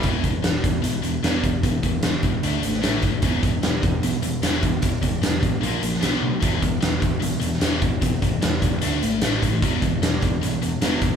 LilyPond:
<<
  \new Staff \with { instrumentName = "Distorted electric guitar" } { \clef bass \time 4/4 \key a \dorian \tempo 4 = 150 <e, b, e>8 <e, b,>8 <e, b,>8 <e, b,>8 <e, b,>8 <e, b,>8 <e, b, e>8 <e, b,>8 | <e, b,>8 <e, b,>8 <e, b,>8 <e, b,>8 <d a d'>8 <d a>8 <a, e a>8 <a, e>8 | <e, b, e>8 <e, b,>8 <e, b,>8 <e, b,>8 <e, b,>8 <e, b,>8 <e, b, e>8 <e, b,>8 | <e, b,>8 <e, b,>8 <e, b,>8 <e, b,>8 <ais, eis ais>8 <ais, eis>8 <b, fis b>8 <b, fis>8 |
<e, b, e>8 <e, b,>8 <e, b,>8 <e, b,>8 <e, b,>8 <e, b,>8 <e, b, e>8 <e, b,>8 | <e, b,>8 <e, b,>8 <e, b,>8 <e, b,>8 <d a d'>8 <d a>8 <a, e a>8 <a, e>8 | <e, b, e>8 <e, b,>8 <e, b,>8 <e, b,>8 <e, b,>8 <e, b,>8 <e, b, e>8 <e, b,>8 | }
  \new Staff \with { instrumentName = "Overdriven electric guitar" } { \clef bass \time 4/4 \key a \dorian <e, b, e>8 <e, b,>8 <e, b,>8 <e, b,>8 <e, b,>8 <e, b,>8 <e, b, e>8 <e, b,>8 | <e, b,>8 <e, b,>8 <e, b,>8 <e, b,>8 <d a d'>8 <d a>8 <a, e a>8 <a, e>8 | <e, b, e>8 <e, b,>8 <e, b,>8 <e, b,>8 <e, b,>8 <e, b,>8 <e, b, e>8 <e, b,>8 | <e, b,>8 <e, b,>8 <e, b,>8 <e, b,>8 <ais, eis ais>8 <ais, eis>8 <b, fis b>8 <b, fis>8 |
<e, b, e>8 <e, b,>8 <e, b,>8 <e, b,>8 <e, b,>8 <e, b,>8 <e, b, e>8 <e, b,>8 | <e, b,>8 <e, b,>8 <e, b,>8 <e, b,>8 <d a d'>8 <d a>8 <a, e a>8 <a, e>8 | <e, b, e>8 <e, b,>8 <e, b,>8 <e, b,>8 <e, b,>8 <e, b,>8 <e, b, e>8 <e, b,>8 | }
  \new Staff \with { instrumentName = "Fingered electric bass" } { \clef bass \time 4/4 \key a \dorian e,,8 e,,8 e,,8 e,,8 b,,8 e,,8 e,,4 | e,,8 e,,8 e,,8 e,,8 d,8 gis,,8 a,,8 fis,,8 | e,,8 e,,8 e,,8 e,,8 b,,8 e,,8 e,,4 | e,,8 e,,8 e,,8 a,,8 ais,,8 ais,,8 b,,8 b,8 |
e,,8 e,,8 e,,8 e,,8 b,,8 e,,8 e,,4 | e,,8 e,,8 e,,8 e,,8 d,8 gis,,8 a,,8 a,8 | e,,8 e,,8 e,,8 e,,8 b,,8 e,,8 e,,4 | }
  \new DrumStaff \with { instrumentName = "Drums" } \drummode { \time 4/4 <hh bd>8 <hh bd>8 <hh sn>8 <hh bd>8 hh8 hh8 <hh sn>8 <hh bd>8 | <hh bd>8 <hh bd>8 <hh sn>8 <hh bd>8 hh8 hh16 sn16 <hh sn>8 <hh bd>8 | <hh bd>8 <hh bd>8 <hh sn>8 <hh bd>8 hh8 hh8 <hh sn>8 <hh bd>8 | <hh bd>8 <hh bd>8 <hh sn>8 <hh bd>8 hh8 hh16 sn16 <hh sn>16 sn16 tommh8 |
<hh bd>8 <hh bd>8 <hh sn>8 <hh bd>8 hh8 hh16 sn16 <hh sn>8 <hh bd>8 | <hh bd>8 <hh bd>8 <hh sn>8 <hh bd>8 hh8 hh8 <hh sn>8 <hh bd>8 | <hh bd>8 <hh bd>8 <hh sn>8 <hh bd>8 hh8 hh8 <hh sn>16 sn16 <hh bd>8 | }
>>